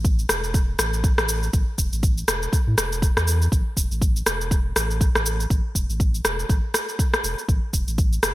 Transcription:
Already playing: A1
0.05 kick, shaker
0.19 shaker
0.29 E1, cross-stick, shaker
0.44 shaker
0.54 kick, shaker
0.79 A1, cross-stick, shaker
0.93 shaker
1.04 kick, shaker
1.18 A1, cross-stick, shaker
1.29 shaker
1.43 shaker
1.53 A1, kick, shaker
1.78 E1, kick, shaker
1.93 A1, shaker
2.03 kick, shaker
2.18 shaker
2.28 E1, cross-stick, shaker
2.43 shaker
2.53 kick, shaker
2.67 A2
2.78 E1, cross-stick, shaker
2.92 shaker
3.02 kick, shaker
3.17 E2, cross-stick, shaker
3.27 shaker
3.42 shaker
3.52 A1, kick, shaker
3.77 E1, kick, shaker
3.91 A1, shaker
4.02 kick, shaker
4.16 shaker
4.26 E1, cross-stick, shaker
4.41 shaker
4.51 kick, shaker
4.76 A1, cross-stick, shaker
4.91 shaker
5.01 kick, shaker
5.15 A1, cross-stick, shaker
5.26 shaker
5.40 shaker
5.50 A1, kick, shaker
5.75 E1, kick, shaker
5.89 A1, shaker
6.00 kick, shaker
6.14 shaker
6.25 E1, cross-stick, shaker
6.39 shaker
6.49 A1, kick, shaker
6.74 cross-stick, shaker
6.89 shaker
6.99 kick, shaker
7.14 cross-stick, shaker
7.24 E1, shaker
7.38 shaker
7.49 A1, kick, shaker
7.73 E1, kick, shaker
7.88 A1, shaker
7.98 kick, shaker
8.13 shaker
8.23 E1, cross-stick, shaker

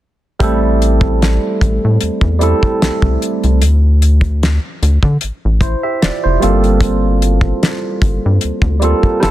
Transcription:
0.39 A1 G3 A3 C4 E4 A4, kick, closed hi-hat
0.82 closed hi-hat
1.01 kick
1.22 snare, closed hi-hat
1.61 A1, kick, closed hi-hat
1.85 A2
2.01 E2, closed hi-hat
2.21 E2, kick
2.39 G3 A3 C4 E4, closed hi-hat
2.43 A4
2.63 kick
2.82 C2, snare, closed hi-hat
3.02 C2, kick
3.22 closed hi-hat
3.44 C2, closed hi-hat
3.62 D2, closed hi-hat
4.02 closed hi-hat
4.21 kick, closed hi-hat
4.43 snare, closed hi-hat
4.82 D2, closed hi-hat
5.03 D3, kick
5.21 A1, closed hi-hat
5.45 A1
5.61 E4 C5, kick, closed hi-hat
5.83 G4 E5
6.02 F1 F4 D5, snare, closed hi-hat
6.24 F1 E4 C5
6.40 G1 G3 A#3 C4 F4 A4, closed hi-hat
6.64 closed hi-hat
6.81 kick, closed hi-hat
7.22 closed hi-hat
7.41 kick
7.63 snare, closed hi-hat
8.02 G1, kick, closed hi-hat
8.26 G2
8.41 D2, closed hi-hat
8.62 D2, kick
8.80 G3 A#3 C4 F4, closed hi-hat
8.84 A4
9.03 kick
9.20 G1 G3 B3 E4 F4 A4, snare, closed hi-hat

